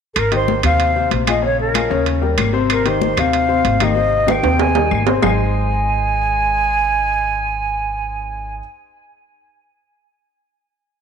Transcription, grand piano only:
0.32 0.58 D#3 medium
0.32 0.58 D#4 medium
0.32 0.58 G4 medium
0.64 0.90 C3 medium
0.64 0.90 C4 medium
0.64 0.90 C5 medium
0.96 1.22 C3 medium
0.96 1.22 C4 medium
0.96 1.22 C5 medium
1.27 1.40 F3 medium
1.27 1.40 F4 medium
1.27 1.41 G#4 medium
1.42 1.68 C#3 medium
1.42 1.69 C#4 medium
1.42 1.69 C#5 medium
1.74 1.88 F3 medium
1.74 1.88 F4 medium
1.74 1.88 G#4 medium
1.90 2.16 C#3 medium
1.90 2.16 C#4 medium
1.90 2.17 C#5 medium
2.21 2.48 G3 medium
2.21 2.48 G4 medium
2.21 2.48 A#4 medium
2.53 2.79 C3 medium
2.53 2.79 C4 medium
2.53 2.80 C5 medium
2.85 3.11 D#3 medium
2.85 3.11 D#4 medium
2.85 3.12 G4 medium
3.17 3.43 C3 medium
3.17 3.44 C4 medium
3.17 3.44 C5 medium
3.48 3.75 C3 medium
3.48 3.75 C4 medium
3.48 3.75 C5 medium
3.80 3.93 D#3 medium
3.80 3.93 D#4 medium
3.80 3.94 G4 medium
3.96 4.22 C3 medium
3.96 4.22 C4 medium
3.96 4.22 C5 medium
4.27 4.40 D#3 medium
4.27 4.40 D#4 medium
4.27 4.41 G4 medium
4.43 4.69 C3 medium
4.43 4.70 C4 medium
4.43 4.70 C5 medium
4.75 5.02 D#3 medium
4.75 5.02 G3 medium
4.75 5.02 D#4 medium
5.07 5.20 C3 medium
5.07 5.20 C4 medium
5.07 5.20 C5 medium
5.22 8.58 G#3 medium
5.22 8.58 D#4 medium
5.22 8.58 G#4 medium
5.22 8.58 C5 medium
5.22 8.58 D#5 medium

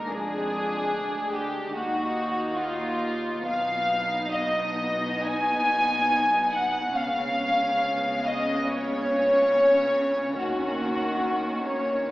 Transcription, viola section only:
0.10 1.71 G#3 soft
0.10 1.71 D4 medium
1.74 3.45 A#3 medium
1.74 3.44 D#4 medium
3.46 6.92 B3 medium
3.46 6.92 D#4 medium
6.96 10.36 B3 medium
6.96 12.07 C#4 medium
10.39 12.07 A#3 medium

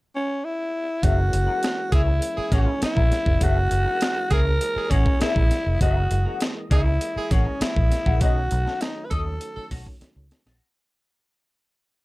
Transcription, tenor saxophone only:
1.92 2.02 G#4 loud
2.37 2.75 G#4 loud
4.31 4.40 G#4 loud
4.77 4.96 G#4 medium
6.72 6.81 G#4 loud
7.17 7.36 G#4 medium
9.10 9.20 A4 loud
9.56 9.75 A4 medium

